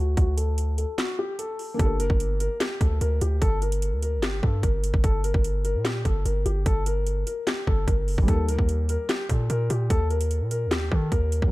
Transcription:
Already playing: D2 F#4
0.17 D2 F#4, kick, closed hi-hat
0.37 A4, closed hi-hat
0.58 closed hi-hat
0.78 A4, closed hi-hat
0.98 F#4, snare, clap, closed hi-hat
1.19 G4
1.39 A4, closed hi-hat
1.59 open hi-hat
1.74 A#3 D4
1.79 G1 G4 A4, kick, closed hi-hat
1.85 A#4
2.00 F#1 A#4, closed hi-hat
2.10 G1, kick
2.20 closed hi-hat
2.40 A#4, closed hi-hat
2.60 G4, snare, clap, closed hi-hat
2.81 D2 A4, kick, closed hi-hat
3.01 D2 A#4, closed hi-hat
3.21 D2 G4, closed hi-hat
3.42 G1 A4, kick, closed hi-hat
3.62 A#4, closed hi-hat
3.72 closed hi-hat
3.82 closed hi-hat
3.92 D2
4.03 A#4, closed hi-hat
4.18 G1
4.23 G4, snare, clap, closed hi-hat
4.43 G2 A4, kick
4.63 G1 A#4, kick, closed hi-hat
4.84 closed hi-hat
4.94 G1, kick
5.04 G1 A4, kick, closed hi-hat
5.24 A#4, closed hi-hat
5.34 G1, kick
5.44 closed hi-hat
5.65 A#4, closed hi-hat
5.75 A#2
5.85 G4, snare, clap, closed hi-hat
6.05 G1 A4, kick, closed hi-hat
6.25 G1 A#4, closed hi-hat
6.46 G1 G4, closed hi-hat
6.66 G1 A4, kick, closed hi-hat
6.86 A#4, closed hi-hat
7.07 closed hi-hat
7.27 A#4, closed hi-hat
7.47 G4, snare, clap, closed hi-hat
7.67 G1 A4, kick
7.88 G1 A#4, kick, closed hi-hat
8.08 F#1, open hi-hat
8.18 G1, kick
8.22 G3 A#3
8.28 D#2 D#4 G4 A4, kick, closed hi-hat
8.33 A#4
8.48 D2 A#4, closed hi-hat
8.59 D#2, kick
8.69 closed hi-hat
8.89 A#4, closed hi-hat
9.09 G4, snare, clap, closed hi-hat
9.29 A#2 A4, kick, closed hi-hat
9.50 A#2 A#4, closed hi-hat
9.70 A#2 G4, closed hi-hat
9.90 D#2 A4, kick, closed hi-hat
10.10 A#4, closed hi-hat
10.21 closed hi-hat
10.31 closed hi-hat
10.41 A#2
10.51 A#4, closed hi-hat
10.66 D#2
10.71 G4, snare, clap, closed hi-hat
10.92 D#3 A4, kick
11.12 D#2 A#4, kick, closed hi-hat
11.32 closed hi-hat
11.42 D#2, kick
11.47 F#3

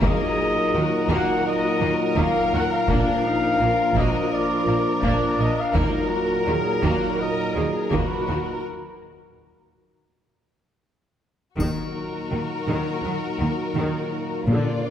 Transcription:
0.02 D#2 A#2 D#3 F#3 A#3 D#4 G#4 A#4 D#5, taiko
0.74 D#2 D#3 A#3 D#4 F#4
1.09 D#2 D#3 A#3 F#5, taiko
1.46 D#5
1.81 D#2 D#3 A#3 D#4
2.17 D#2 D#3 A#3 A#4 F5, taiko
2.53 D#2 D#3 A#3 F#4 F#5
2.72 F5
2.88 A#1 A#2 F3 A#3 D4 F5, taiko
3.26 D#4
3.59 A#1 A#2 A#3 F4
3.94 A#1 A#2 A#3 F#4 D#5, taiko
4.32 F4 D5
4.67 A#1 A#2 A#3
5.02 A#1 A#2 A#3 D4 D5, taiko
5.38 A#1 A#2 A#3 D4 D#5
5.58 F5
5.74 D#2 A#2 D#3 F#3 A#3 D#4 A#4, taiko
6.11 F#4
6.46 D#2 D#3 A#3 D#4 G#4
6.82 D#2 D#3 A#3 F#4, taiko
7.20 A#4 D#5
7.56 D#2 D#3 A#3 D#4 G#4
7.91 D#2 D#3 A#3 F#4 B4, taiko
8.27 D#2 D#3 A#3 F#4
8.47 A#4
11.58 D#2 A#2 D#3 F#3 A#3 D#4 F#4 A#4, taiko, triangle
12.31 D#2 D#3 A#3
12.67 D#2 D#3
13.03 D#2 D#3 F#3
13.40 D#2 D#3 A#3
13.75 D#2 D#3
14.46 A#1 A#2 F3 D4 F4 D5
14.51 D3

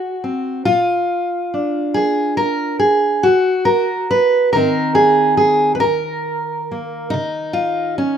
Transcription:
Already playing: F2 F#4
0.24 C4
0.65 A#2 F4
1.54 D4
1.94 A#3 G#4
2.37 A#4
2.79 G#4
3.23 D#2 F#4
3.65 A#4
4.11 B4
4.53 G#2 D#3 C4 D#4 A#4
4.95 G#4
5.37 G#4
5.75 B4
5.80 D#2 A#4
6.71 A#3
7.10 C#3 D#4
7.53 F4
7.98 C#4

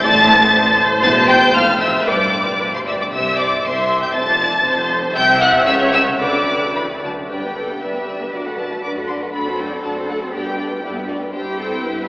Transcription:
0.03 A1 A2 D5 A5 A6
0.29 C5
1.03 E1 E2 A5 A6
1.28 G5 G6
1.54 F1 F2 F5 F6
1.80 E5 E6
2.07 G1 G2 B4 D5 D6
2.59 G1 G2 B4
2.74 C5 C6
2.87 D5 E5 E6
3.00 D5 D6
3.12 C2 C3 C5 E5 E6
3.37 D5 D6
3.64 C2 C3 C5 E5 C6
4.03 G5 G6
4.14 F1 F2 C5 A5 A6
4.40 D5
4.64 F1 F2 C5
5.14 C2 C3 E5 G5 G6
5.41 F#5 F#6
5.66 C#2 C#3 C#5 E5 E6
5.93 E5 E6
6.20 D2 D3 B4 D5 D6
6.75 E3 B5
7.02 F#3 A5
7.29 G2 G3 D4 B4 D5 G5
7.42 B3 G4 B4
7.55 G3 D4 A4 B4 D5
7.68 B3 G4 B4
7.81 G2 G3 D4 B4 D5 E5
7.95 B3 G4 B4
8.08 G3 D4 B4 D5
8.21 B3 G4 B4
8.32 F#2 F#3 D4 F#4 D5
8.46 A3 F#4 A4 F#5
8.57 F#3 D4 F#4 D5 A5
8.71 A3 F#4 A4 F#5
8.83 F#2 F#3 D4 F#4 D5 D6
8.96 A3 F#4 A4 F#5
9.07 F#3 D4 F#4 D5 C6
9.21 A3 F#4 A4 F#5
9.33 F#2 A3 D4 F#4 A4 D5 B5
9.46 C4 F#4 A4 C5
9.58 A3 D4 F#4 D5 G5
9.71 C4 F#4 A4 C5
9.84 F#2 A3 D4 F#4 D5 A5
9.96 C4 F#4 A4 C5
10.09 A3 D4 F#4 D5 F#5
10.21 C4 F#4 A4 C5
10.32 G2 B3 D4 G4 D5 G5
10.45 G3 B3 B4 G5
10.57 B3 D4 G4 D5
10.69 G3 B3 B4 G5
10.82 G2 B3 D4 E4 G4 D5
10.95 G3 B3 B4 G5
11.08 B3 D4 F#4 G4 D5
11.20 G3 B3 B4 G5
11.33 G2 D4 E4 G4 C5 G5
11.58 C4 A4
11.84 G2 B3 G4 B4

